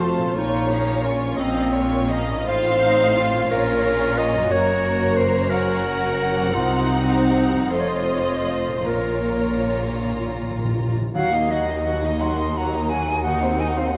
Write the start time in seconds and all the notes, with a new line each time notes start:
Already playing: F1 F2 F3 C4 F4 A4 C5
0.01 A3 F4 A4 F5 A5
0.17 A#2
0.22 C#4
0.26 F4
0.31 A#4
0.35 A#1 A#2 A#3 D#4 F4 C#5 C#6
0.69 F3 C#4 F5 A#5
1.03 A#3 C#4 F4 C#5 C#6
1.37 A#1 A#2 F3 C4 C#4 D#5 F5 A#5
1.72 A#3 F4 C#5 C#6
2.09 F3 C#4 D#5 F5 A#5
2.28 A2
2.33 D#4
2.37 F4
2.42 A2 C4 F4 C5
2.46 A1 C5 F5 C6
2.83 D#4
3.17 F4
3.33 A#2
3.37 C#4
3.42 F4
3.46 C#5
3.51 A#1 A#2 C#4 F4 A#4 C#5 A#5
4.18 D#5
4.33 F#2
4.38 C#4
4.42 F#4
4.47 F#2 C#5 A#5
4.51 F#1 A#3 F#4 A#4 C#5
5.17 C5
5.50 C#4 F#4 A#4 F#5
6.36 C3
6.40 C4
6.45 F#4
6.49 A#4 C5
6.54 C2 C3 C4 D#4 F4
6.92 D#4
7.53 F2
7.57 C4
7.62 F4
7.66 F2 A4 C6
7.71 F1 A3 F4 C5 D#5
7.80 C#5
7.89 C5
7.96 C#5
8.04 C5
8.13 C#5
8.20 C5
8.28 C#5
8.37 C5
8.44 C#5
8.51 C5
8.68 A#2
8.72 C#4
8.77 F4
8.81 A#4
8.85 A#1 A#2 A#3 F4 A#4 C#5 A#5
8.93 A#2
9.02 A#2
9.09 A#2
9.16 A#2
9.39 A#2
9.46 A#2
9.54 A#2
9.61 A#2
9.76 A#2
9.84 A#2
9.90 A#2
9.98 A#2
10.06 A#2
10.13 A#2
10.21 A#2
10.28 A#2
10.36 A#2
10.42 A#2
10.50 A#2
10.58 A#2
10.65 A#2
10.72 A#2
10.80 A#2
10.88 A#2
10.94 A#2
11.01 A#2
11.14 D#2 D#3 F#3 F#4 F5 F#5
11.32 A#3 D#4 D#5
11.50 F#3 A#3 F#4 D#5 F#5
11.68 A#3 D#4 D#5
11.86 F#3 D#4 F#4 F#5
12.03 A#3 D#4 D#5
12.20 F#3 F#4 A#4 F#5 C6
12.38 A#3 D#4 D#5
12.56 F#3 F#4 F#5 A#5
12.73 A#3 D#4 D#5
12.89 F#3 A#3 F#4 F#5 G#5
13.08 A#3 D#4 D#5
13.22 D#3 F#4 D#5 F#5
13.27 D#4
13.41 C4 D#4 C5
13.58 D#4 F#4 D#5 G#5
13.68 F#5
13.76 C4 D#4 C5 F5
13.87 F#5
13.93 F#4 D#5